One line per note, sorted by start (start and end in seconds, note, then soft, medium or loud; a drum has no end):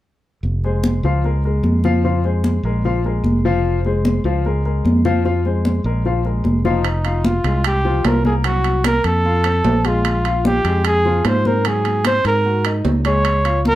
0.43 1.00 F1 medium
0.43 high conga soft
0.64 0.97 G#3 medium
0.64 0.97 G#4 medium
0.64 0.98 C5 medium
0.64 high conga soft
0.84 high conga medium
1.03 1.60 C#2 medium
1.03 1.21 F3 medium
1.03 1.21 F4 medium
1.03 1.21 F5 medium
1.03 high conga soft
1.24 1.41 G#3 medium
1.24 1.41 G#4 medium
1.24 1.41 A#4 medium
1.24 high conga soft
1.44 1.77 G#3 medium
1.44 1.78 G#4 medium
1.44 1.78 A#4 medium
1.44 high conga soft
1.63 2.58 F2 medium
1.63 high conga medium
1.84 2.01 F3 medium
1.84 2.01 F4 medium
1.84 2.01 F5 medium
1.84 high conga medium
2.04 2.21 F3 medium
2.04 2.21 F4 medium
2.04 2.21 F5 medium
2.04 high conga soft
2.24 2.57 G#3 medium
2.24 2.57 G#4 medium
2.24 2.58 C5 medium
2.24 high conga soft
2.44 high conga medium
2.63 3.20 A#1 medium
2.63 2.81 G#3 medium
2.63 2.81 G#4 medium
2.63 2.81 A#4 medium
2.84 3.01 F3 medium
2.84 3.01 F4 medium
2.84 3.02 F5 medium
2.84 high conga soft
3.04 3.38 G#3 medium
3.04 3.38 G#4 medium
3.04 3.38 A#4 medium
3.04 high conga soft
3.24 4.18 F1 medium
3.24 high conga medium
3.45 3.78 F3 medium
3.45 3.78 F4 medium
3.45 3.78 F5 medium
3.64 high conga soft
3.85 4.18 G#3 medium
3.85 4.18 G#4 medium
3.85 4.18 C5 medium
3.85 high conga soft
4.05 high conga medium
4.24 4.81 C#2 medium
4.24 4.41 F3 medium
4.24 4.42 F4 medium
4.24 4.42 F5 medium
4.24 high conga soft
4.45 4.62 G#3 medium
4.45 4.62 G#4 medium
4.45 4.62 A#4 medium
4.45 high conga soft
4.65 4.98 G#3 medium
4.65 4.98 G#4 medium
4.65 4.98 A#4 medium
4.65 high conga soft
4.85 5.79 F2 medium
4.85 high conga medium
5.05 5.21 F3 medium
5.05 5.22 F4 medium
5.05 5.22 F5 medium
5.05 high conga medium
5.25 5.42 F3 medium
5.25 5.42 F4 medium
5.25 5.42 F5 medium
5.25 high conga soft
5.45 5.78 G#3 medium
5.45 5.78 G#4 medium
5.45 5.78 C5 medium
5.45 high conga soft
5.65 high conga medium
5.84 6.41 A#1 medium
5.84 6.02 G#3 medium
5.84 6.02 G#4 medium
5.84 6.02 A#4 medium
6.05 6.22 F3 medium
6.05 6.22 F4 medium
6.05 6.22 F5 medium
6.05 high conga soft
6.25 6.58 G#3 medium
6.25 6.58 G#4 medium
6.25 6.58 A#4 medium
6.25 high conga soft
6.44 7.38 F1 medium
6.44 high conga medium
6.65 6.81 F3 medium
6.65 7.28 D#4 medium
6.65 6.81 F4 medium
6.65 6.82 F5 medium
6.65 high conga medium
6.84 high conga soft
6.84 high timbale medium
7.05 7.38 F4 medium
7.05 7.38 F5 medium
7.05 high conga soft
7.05 high timbale medium
7.24 7.66 F4 medium
7.24 high conga medium
7.24 low timbale medium
7.44 8.00 C2 medium
7.44 7.78 G#3 medium
7.44 7.78 G#4 medium
7.44 high conga soft
7.44 high timbale medium
7.64 8.08 G4 medium
7.64 high conga soft
7.64 high timbale loud
7.85 8.18 F3 medium
7.85 8.18 F4 medium
7.85 high conga soft
8.04 8.99 C2 medium
8.04 8.26 A#4 medium
8.04 high conga medium
8.04 high timbale medium
8.04 low timbale medium
8.25 8.41 A#3 medium
8.25 8.35 G#4 medium
8.25 8.42 A#4 medium
8.25 high conga medium
8.44 8.78 F#3 medium
8.44 8.78 F#4 medium
8.44 8.83 F#4 medium
8.44 high conga soft
8.44 high timbale medium
8.64 high conga soft
8.64 high timbale medium
8.84 9.18 A#3 medium
8.84 9.18 A#4 medium
8.84 9.07 A#4 medium
8.84 high conga medium
8.84 high timbale loud
8.84 low timbale medium
9.04 9.61 F2 medium
9.04 9.87 A4 loud
9.04 high timbale medium
9.25 9.42 F4 medium
9.25 9.42 F5 medium
9.25 high conga soft
9.44 9.78 C4 medium
9.44 9.78 C5 medium
9.44 high conga soft
9.44 high timbale medium
9.64 10.59 A#1 medium
9.64 high conga medium
9.64 low timbale medium
9.85 10.18 G#3 medium
9.85 10.46 F4 medium
9.85 10.18 G#4 medium
9.85 high conga medium
9.85 high timbale medium
10.05 high conga soft
10.05 high timbale medium
10.25 10.58 F4 medium
10.25 10.58 F5 medium
10.25 high conga soft
10.25 high timbale medium
10.45 10.83 G4 medium
10.45 high conga medium
10.45 low timbale medium
10.64 11.21 F2 medium
10.64 10.98 G#3 medium
10.64 10.98 G#4 medium
10.64 high conga soft
10.64 high timbale medium
10.85 11.28 G#4 loud
10.85 high conga soft
10.85 high timbale medium
11.05 11.38 F3 medium
11.05 11.38 F4 medium
11.05 high conga soft
11.25 12.19 G#2 medium
11.25 11.48 C5 medium
11.25 high conga medium
11.25 high timbale medium
11.25 low timbale medium
11.45 11.62 C4 medium
11.45 11.69 A#4 medium
11.45 11.62 C5 medium
11.45 high conga medium
11.65 11.99 F#3 medium
11.65 11.99 F#4 medium
11.65 12.06 G#4 medium
11.65 high conga soft
11.65 high timbale medium
11.85 high conga soft
11.85 high timbale medium
12.05 12.38 C4 medium
12.05 12.39 C5 medium
12.05 12.25 C5 loud
12.05 high conga medium
12.05 high timbale medium
12.05 low timbale medium
12.25 12.81 G#2 medium
12.25 12.75 A#4 medium
12.25 high timbale medium
12.45 12.62 F#4 medium
12.45 12.62 F#5 medium
12.45 high conga soft
12.65 12.98 D#4 medium
12.65 12.99 D#5 medium
12.65 high conga soft
12.65 high timbale medium
12.84 13.75 C#2 medium
12.84 high conga medium
12.84 low timbale medium
13.05 13.38 G#3 medium
13.05 13.38 G#4 medium
13.05 13.62 C#5 medium
13.05 high timbale medium
13.25 high conga soft
13.25 high timbale medium
13.45 13.75 F4 medium
13.45 13.75 F5 medium
13.45 high conga soft
13.45 high timbale medium
13.65 13.75 A#4 loud
13.65 high conga medium
13.65 low timbale medium